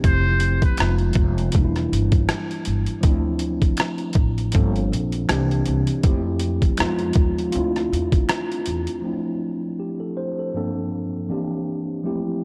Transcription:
0.03 0.58 F1 loud
0.03 0.78 F3 medium
0.03 0.79 A3 medium
0.03 0.79 C4 medium
0.03 0.79 E4 medium
0.03 0.80 G4 medium
0.03 0.59 C5 loud
0.03 kick loud
0.03 closed hi-hat medium
0.40 closed hi-hat medium
0.62 0.97 B4 medium
0.62 kick medium
0.62 closed hi-hat soft
0.77 1.13 F1 medium
0.77 1.54 F3 medium
0.77 1.54 G#3 medium
0.77 1.55 B3 medium
0.77 1.55 D#4 medium
0.77 finger snap medium
0.77 cross-stick loud
0.77 closed hi-hat medium
0.82 1.55 F4 medium
0.98 closed hi-hat soft
1.13 1.50 F1 medium
1.13 kick medium
1.13 closed hi-hat medium
1.38 closed hi-hat soft
1.52 1.89 E1 loud
1.52 3.00 E3 medium
1.52 3.01 G3 medium
1.52 3.01 A#3 medium
1.52 kick medium
1.52 closed hi-hat medium
1.57 3.02 D4 medium
1.57 1.63 D#4 medium
1.65 3.06 E4 medium
1.76 cross-stick soft
1.76 closed hi-hat soft
1.92 2.26 G1 medium
1.92 closed hi-hat medium
2.12 kick medium
2.12 closed hi-hat soft
2.29 finger snap medium
2.29 cross-stick loud
2.29 closed hi-hat medium
2.51 closed hi-hat soft
2.65 2.86 G1 medium
2.65 closed hi-hat medium
2.86 closed hi-hat soft
3.01 3.58 D2 loud
3.01 4.49 F3 medium
3.01 4.50 A3 medium
3.01 4.51 C4 medium
3.01 kick loud
3.01 closed hi-hat medium
3.06 4.52 D4 medium
3.06 4.52 E4 medium
3.39 closed hi-hat medium
3.62 kick medium
3.62 closed hi-hat soft
3.77 finger snap medium
3.77 cross-stick loud
3.77 closed hi-hat medium
3.98 closed hi-hat soft
4.13 4.50 A1 medium
4.13 kick loud
4.13 closed hi-hat medium
4.38 closed hi-hat soft
4.52 4.89 G1 loud
4.52 5.29 F3 medium
4.52 5.29 A#3 medium
4.52 5.29 C4 medium
4.52 5.30 D4 medium
4.52 kick medium
4.52 closed hi-hat medium
4.56 5.30 A4 medium
4.76 closed hi-hat soft
4.92 5.26 A#1 medium
4.92 closed hi-hat medium
5.12 closed hi-hat soft
5.29 5.63 C2 medium
5.29 6.04 E3 medium
5.29 6.04 A#3 medium
5.29 6.04 C4 medium
5.29 6.05 D4 medium
5.29 6.05 G4 medium
5.29 finger snap medium
5.29 cross-stick loud
5.29 closed hi-hat medium
5.51 closed hi-hat soft
5.66 5.86 C2 medium
5.66 closed hi-hat medium
5.87 closed hi-hat soft
6.03 6.58 F2 loud
6.03 6.77 F3 medium
6.03 6.79 A3 medium
6.03 6.79 C4 medium
6.03 6.80 E4 medium
6.03 6.80 G4 medium
6.03 kick loud
6.03 closed hi-hat medium
6.39 closed hi-hat medium
6.62 kick medium
6.62 closed hi-hat soft
6.77 7.13 F2 medium
6.77 7.54 F3 medium
6.77 7.54 G#3 medium
6.77 7.54 B3 medium
6.77 7.55 D#4 medium
6.77 7.51 F4 medium
6.77 finger snap medium
6.77 cross-stick loud
6.77 closed hi-hat medium
6.99 closed hi-hat soft
7.13 7.50 D#2 medium
7.13 kick loud
7.13 closed hi-hat medium
7.39 closed hi-hat soft
7.52 7.89 D2 loud
7.52 9.01 A3 medium
7.52 9.01 C4 medium
7.52 9.00 F4 medium
7.52 closed hi-hat medium
7.57 9.02 D4 medium
7.57 9.03 E4 medium
7.76 cross-stick soft
7.76 closed hi-hat soft
7.93 8.26 E2 medium
7.93 closed hi-hat medium
8.12 kick medium
8.12 closed hi-hat soft
8.29 finger snap medium
8.29 cross-stick loud
8.29 closed hi-hat medium
8.52 closed hi-hat soft
8.66 8.86 E2 medium
8.66 closed hi-hat medium
8.87 closed hi-hat soft
9.02 10.50 F3 medium
9.02 10.50 A3 medium
9.02 10.51 C4 medium
9.06 10.52 D4 medium
9.06 10.53 E4 medium
9.80 9.99 G4 medium
10.00 10.16 A4 medium
10.17 10.36 C5 medium
10.39 10.56 A4 medium
10.54 11.29 G2 medium
10.54 11.29 F3 medium
10.54 11.28 A#3 medium
10.54 11.29 C4 medium
10.54 11.30 D4 medium
10.54 11.30 A4 medium
11.29 12.04 E3 medium
11.29 12.04 A#3 medium
11.29 12.04 C4 medium
11.29 12.05 D4 medium
11.29 12.05 G4 medium
12.04 12.44 F3 medium
12.04 12.44 A3 medium
12.04 12.44 C4 medium
12.04 12.44 E4 medium
12.04 12.44 G4 medium

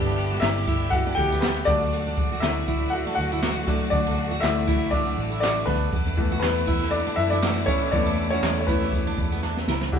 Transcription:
0.00 0.39 G1 loud
0.00 1.64 D3 medium
0.00 1.64 G3 medium
0.00 1.70 G3 medium
0.00 1.43 B3 medium
0.00 1.64 B3 medium
0.00 1.68 D4 medium
0.00 0.43 E4 medium
0.00 1.64 G4 medium
0.00 1.40 B4 loud
0.00 1.65 D5 loud
0.00 0.40 E5 loud
0.06 0.17 D4 medium
0.17 ride medium
0.31 0.42 F#4 medium
0.40 1.14 G1 loud
0.40 0.89 E4 medium
0.40 0.93 E5 loud
0.40 snare loud
0.40 clap medium
0.40 ride medium
0.67 0.91 E4 medium
0.67 kick medium
0.67 ride medium
0.90 1.16 F#4 medium
0.90 1.17 F#5 loud
0.90 kick medium
0.90 ride medium
1.07 1.17 D4 medium
1.15 1.64 D2 medium
1.15 1.41 G4 medium
1.15 1.42 G5 loud
1.15 kick medium
1.15 ride medium
1.32 1.41 B3 medium
1.40 1.56 B3 medium
1.40 1.66 B3 medium
1.40 1.67 B4 medium
1.40 snare loud
1.40 clap medium
1.40 ride medium
1.65 2.39 D2 medium
1.65 5.88 D3 medium
1.65 5.88 F#3 medium
1.65 2.39 F#3 medium
1.65 5.88 A3 medium
1.65 2.39 A3 soft
1.65 1.81 D4 medium
1.65 2.39 D4 medium
1.65 5.88 F#4 medium
1.65 2.44 D5 loud
1.65 kick loud
1.65 open hi-hat medium
1.65 ride medium
1.93 hi-hat pedal medium
1.93 ride medium
2.07 2.17 D4 medium
2.07 ride soft
2.17 kick loud
2.17 ride medium
2.32 2.42 F#4 medium
2.40 3.03 D2 loud
2.40 2.90 E4 medium
2.40 2.93 E5 loud
2.40 snare loud
2.40 clap medium
2.40 ride medium
2.68 2.92 E4 medium
2.68 kick medium
2.68 ride medium
2.90 3.16 F#4 medium
2.90 3.13 F#5 loud
2.90 ride medium
3.07 3.17 D4 medium
3.15 3.64 D2 medium
3.15 3.89 F#4 medium
3.15 3.94 F#5 loud
3.15 ride medium
3.32 3.42 E4 medium
3.42 3.56 F#4 medium
3.42 snare loud
3.42 clap medium
3.42 ride medium
3.67 4.02 F#3 medium
3.67 4.02 A3 soft
3.67 3.81 D4 medium
3.67 3.92 D4 medium
3.67 kick loud
3.67 ride medium
3.82 ride soft
3.90 4.39 D2 loud
3.90 4.40 D4 medium
3.90 4.43 D5 medium
3.90 kick loud
3.90 ride medium
4.07 4.17 D4 medium
4.07 ride soft
4.18 ride medium
4.31 4.42 F#4 medium
4.40 5.14 D2 loud
4.40 4.65 F#3 medium
4.40 4.65 A3 soft
4.40 4.66 D4 medium
4.40 4.90 E4 medium
4.40 4.93 E5 loud
4.40 snare loud
4.40 clap medium
4.40 ride medium
4.67 4.91 E4 medium
4.67 kick medium
4.67 ride medium
4.83 snare soft
4.91 5.40 D4 medium
4.91 5.39 D5 medium
4.91 kick medium
4.91 ride medium
5.07 5.17 D4 medium
5.17 5.64 A1 loud
5.17 ride medium
5.32 5.42 E4 medium
5.40 5.66 D4 medium
5.40 5.56 F#4 medium
5.40 5.65 D5 medium
5.40 snare loud
5.40 clap medium
5.40 ride medium
5.66 5.91 D2 medium
5.66 6.17 B3 medium
5.66 5.81 D4 medium
5.66 6.38 B4 loud
5.66 kick loud
5.66 ride medium
5.82 ride soft
5.91 6.39 E2 loud
5.91 9.88 B2 medium
5.91 9.88 E3 medium
5.91 9.88 A3 medium
5.91 9.88 E4 medium
5.91 kick loud
5.91 ride medium
6.07 6.17 D4 medium
6.07 ride soft
6.17 6.52 E3 medium
6.17 6.52 A3 medium
6.17 6.41 B3 medium
6.17 kick loud
6.17 ride medium
6.32 6.42 F#4 medium
6.40 7.03 E2 loud
6.40 6.89 B3 medium
6.40 6.93 B4 medium
6.40 snare loud
6.40 clap loud
6.40 ride medium
6.67 6.91 E4 medium
6.67 kick medium
6.67 ride medium
6.82 snare soft
6.91 7.16 D4 medium
6.91 7.17 D5 medium
6.91 ride medium
7.07 7.17 D4 medium
7.16 7.64 F#2 loud
7.16 7.31 E4 medium
7.16 7.31 E5 loud
7.16 ride medium
7.30 7.66 D4 medium
7.30 7.42 E4 medium
7.30 7.68 D5 medium
7.42 7.65 E3 soft
7.42 7.65 A3 soft
7.42 7.66 B3 medium
7.42 7.56 F#4 medium
7.42 snare loud
7.42 clap medium
7.42 ride medium
7.66 7.74 C#4 medium
7.66 7.81 E4 medium
7.66 7.72 C#5 medium
7.66 kick loud
7.66 ride medium
7.82 ride soft
7.91 8.39 E2 loud
7.91 8.66 E3 medium
7.91 8.67 A3 medium
7.91 8.67 B3 medium
7.91 8.30 D4 medium
7.91 8.32 D5 medium
7.91 kick loud
7.91 ride medium
8.07 8.17 D4 medium
8.18 ride medium
8.30 8.60 C#4 medium
8.30 8.42 F#4 medium
8.30 8.59 C#5 medium
8.43 9.14 E2 loud
8.43 snare loud
8.43 clap medium
8.43 ride medium
8.60 8.67 C#5 medium
8.67 8.90 E3 soft
8.67 8.90 A3 soft
8.67 9.64 B3 medium
8.67 8.92 E4 medium
8.67 9.63 B4 medium
8.67 kick medium
8.67 ride medium
8.82 snare soft
8.92 kick medium
8.92 ride medium
9.07 9.17 D4 medium
9.18 9.64 E2 medium
9.18 kick medium
9.18 ride medium
9.32 9.42 B3 medium
9.43 9.56 D4 medium
9.43 snare medium
9.57 snare medium
9.67 9.91 C#2 medium
9.67 9.81 E4 medium
9.67 snare loud
9.81 snare medium
9.92 9.99 D2 medium
9.92 9.99 A2 medium
9.92 9.99 D4 medium
9.92 9.99 E4 medium
9.92 9.99 F#4 medium
9.92 9.99 G4 medium
9.92 kick medium
9.92 closed hi-hat medium

